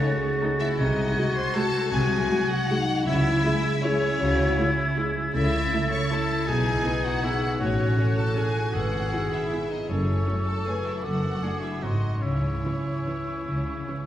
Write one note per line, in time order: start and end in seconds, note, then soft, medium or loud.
0.00 0.79 C#3 medium
0.00 0.59 A3 soft
0.00 0.09 A3 medium
0.00 0.39 C#4 medium
0.00 0.79 C#4 medium
0.00 0.09 D#4 medium
0.00 0.74 F#4 medium
0.00 0.40 F#4 medium
0.00 1.15 G#4 medium
0.00 0.41 C#5 medium
0.00 0.79 C#5 medium
0.00 0.20 D#5 medium
0.00 0.74 A6 medium
0.21 1.34 D#5 soft
0.41 0.50 A3 medium
0.41 0.50 D#4 medium
0.41 1.15 F#4 medium
0.60 0.80 A3 soft
0.60 0.76 E4 medium
0.60 0.67 E5 medium
0.78 1.09 C2 medium
0.78 1.90 C3 medium
0.78 1.09 C3 medium
0.78 1.36 D#4 medium
0.78 1.89 F#4 medium
0.78 1.34 D#5 medium
0.78 1.89 G#6 medium
0.96 1.73 G#3 soft
1.16 1.24 G#3 medium
1.16 1.54 F#4 medium
1.16 1.24 F#4 medium
1.16 1.54 F#4 medium
1.35 1.54 C5 medium
1.35 2.48 D#5 medium
1.35 1.55 C6 medium
1.55 1.63 G#3 medium
1.55 2.28 F#4 medium
1.55 1.63 F#4 medium
1.55 2.67 F#4 medium
1.55 1.92 A4 medium
1.55 1.92 A5 loud
1.74 2.88 G#3 soft
1.91 2.23 C2 medium
1.91 3.08 C3 medium
1.91 2.23 C3 medium
1.91 2.78 F#4 medium
1.91 2.50 G#4 medium
1.91 2.50 G#5 medium
1.91 2.78 G#6 medium
2.10 3.08 F#3 medium
2.29 2.38 G#3 medium
2.29 2.68 F#4 medium
2.29 2.38 F#4 medium
2.49 3.06 F#4 medium
2.49 3.08 D#5 medium
2.49 3.06 F#5 loud
2.69 2.78 G#3 medium
2.69 3.06 D#4 medium
2.69 3.08 F#4 medium
2.69 2.78 F#4 medium
2.89 3.23 G#3 medium
3.06 3.37 C#2 medium
3.06 3.60 C#3 medium
3.06 4.19 C#3 medium
3.06 3.38 C#3 medium
3.06 3.79 E4 medium
3.06 3.81 E4 medium
3.06 3.43 E4 medium
3.06 3.81 E5 loud
3.06 3.79 G#6 medium
3.25 4.01 G#3 medium
3.44 3.53 G#3 medium
3.44 3.83 E4 medium
3.44 3.52 E4 medium
3.44 3.82 G#4 medium
3.64 4.76 E5 medium
3.83 3.91 G#3 medium
3.83 4.97 C#4 medium
3.83 3.91 E4 medium
3.83 5.31 E4 medium
3.83 4.57 E4 medium
3.83 4.19 G#4 medium
3.83 4.97 C#5 loud
3.83 5.31 G#6 medium
4.03 5.15 G#3 medium
4.20 4.51 C#2 medium
4.20 4.51 C#3 medium
4.20 5.33 C#3 medium
4.20 4.57 F#4 medium
4.39 6.49 C#4 soft
4.57 4.66 G#3 medium
4.57 4.97 E4 medium
4.57 4.66 E4 medium
4.57 4.96 E4 soft
4.78 5.92 E5 medium
4.97 5.05 G#3 medium
4.97 5.71 E4 medium
4.97 5.05 E4 medium
4.97 5.34 G#4 medium
5.16 5.36 G#3 soft
5.34 5.65 C#2 medium
5.34 6.49 C#3 medium
5.34 5.65 C#3 medium
5.34 6.10 E4 medium
5.34 5.88 E4 medium
5.34 6.12 A4 medium
5.34 5.88 E5 loud
5.34 6.10 A6 medium
5.53 6.30 A3 soft
5.72 5.80 A3 medium
5.72 6.11 E4 medium
5.72 5.81 E4 medium
5.92 6.12 C#5 medium
5.92 6.50 E5 medium
5.92 6.11 C#6 medium
6.11 6.19 A3 medium
6.11 6.19 E4 medium
6.11 6.48 E4 medium
6.11 6.49 E4 medium
6.11 6.48 A4 medium
6.11 6.48 A5 medium
6.11 6.49 A6 medium
6.31 6.49 A3 soft
6.47 6.78 B1 medium
6.47 6.78 B2 medium
6.47 7.62 B2 medium
6.47 7.25 D#4 medium
6.47 6.85 G#4 medium
6.47 7.04 G#4 medium
6.47 7.04 G#5 medium
6.47 7.59 G#6 medium
6.66 7.42 B3 soft
6.84 6.92 B3 soft
6.84 6.92 D#4 soft
6.84 7.22 D#4 soft
6.84 7.23 B4 medium
7.05 7.60 F#4 medium
7.05 7.62 B4 soft
7.05 7.61 F#5 medium
7.23 7.31 B3 medium
7.23 7.31 D#4 soft
7.23 7.62 D#4 medium
7.23 7.60 E4 medium
7.23 7.60 G#4 medium
7.43 7.62 B3 soft
7.60 7.91 A1 medium
7.60 8.75 A2 medium
7.60 7.91 A2 medium
7.60 8.17 C#4 medium
7.60 7.97 F#4 medium
7.60 8.75 F#4 medium
7.60 8.16 C#5 medium
7.60 8.72 F#6 medium
7.79 8.36 C#4 soft
7.97 8.55 A3 soft
7.97 8.06 C#4 soft
7.97 8.06 F#4 soft
7.97 8.73 A4 medium
8.17 8.76 F#4 soft
8.17 8.37 A4 medium
8.17 8.37 A5 medium
8.36 8.44 C#4 soft
8.36 8.75 C#4 soft
8.36 8.44 F#4 soft
8.36 8.73 G#4 medium
8.36 8.74 G#5 medium
8.56 8.76 A3 soft
8.73 9.05 G#1 medium
8.73 9.05 G#2 medium
8.73 9.28 G#2 medium
8.73 9.90 G#2 medium
8.73 9.30 F#4 medium
8.73 9.62 G#4 medium
8.73 9.12 B4 medium
8.73 9.32 F#5 medium
8.73 9.60 E6 medium
8.93 9.69 B3 soft
9.11 9.20 B3 soft
9.11 9.51 E4 soft
9.11 9.20 E4 soft
9.11 9.87 G#4 medium
9.32 9.70 E4 medium
9.32 9.90 G#4 soft
9.32 9.71 E5 medium
9.51 9.59 B3 soft
9.51 9.59 E4 soft
9.51 9.90 E4 soft
9.70 9.90 B3 soft
9.70 9.78 D#4 medium
9.70 9.88 D#5 medium
9.88 10.20 F#1 medium
9.88 11.02 F#2 soft
9.88 10.20 F#2 medium
9.88 10.45 C#4 medium
9.88 11.00 A4 medium
9.88 10.66 A4 medium
9.88 10.47 C#5 medium
9.88 11.04 C#6 medium
10.08 10.84 C#4 soft
10.26 10.35 A3 soft
10.26 10.35 C#4 soft
10.26 10.65 F#4 soft
10.47 11.61 A4 soft
10.47 10.66 A4 medium
10.47 10.66 A5 medium
10.66 10.74 A3 soft
10.66 10.74 C#4 soft
10.66 11.41 F#4 soft
10.66 10.85 G#4 medium
10.66 11.04 B4 soft
10.66 10.86 G#5 medium
10.85 11.05 C#4 soft
10.85 11.04 E4 soft
10.85 11.04 E5 medium
11.03 11.36 F#1 soft
11.03 11.84 F#2 soft
11.03 11.36 F#2 soft
11.03 11.62 F#4 medium
11.03 11.44 A4 soft
11.03 11.42 A4 medium
11.03 11.62 F#5 medium
11.03 11.82 D6 soft
11.22 11.84 D4 soft
11.41 11.49 A3 soft
11.41 11.50 D4 soft
11.41 11.83 D4 soft
11.41 12.01 F#4 soft
11.41 11.84 G#4 soft
11.62 11.83 E4 soft
11.62 11.84 A4 soft
11.62 11.83 E5 soft
11.82 12.16 G#1 soft
11.82 12.24 G#2 soft
11.82 12.16 G#2 soft
11.82 11.91 F#3 soft
11.82 11.91 C4 soft
11.82 12.22 D#4 soft
11.82 12.23 D#4 soft
11.82 12.24 F#4 soft
11.82 12.23 D#5 soft
11.82 12.25 C6 soft
12.03 12.24 F#4 soft
12.03 12.85 G#4 soft
12.22 12.57 C#2 soft
12.22 12.57 C#3 soft
12.22 13.47 C#3 soft
12.22 14.06 C#4 soft
12.22 14.06 E4 soft
12.22 14.06 C#5 soft
12.22 14.06 C#6 soft
12.43 13.27 C#4 soft
12.64 12.72 E3 soft
12.64 12.72 C#4 soft
12.64 13.06 E4 soft
12.86 14.06 G#4 soft
13.06 13.14 E3 soft
13.06 13.14 C#4 soft
13.06 13.89 E4 soft
13.28 14.06 C#4 soft
13.48 13.81 C#2 soft
13.48 13.81 C#3 soft
13.48 14.06 C#3 soft
13.68 14.06 G#3 soft
13.88 13.96 E3 soft
13.88 13.96 C#4 soft
13.88 14.06 E4 soft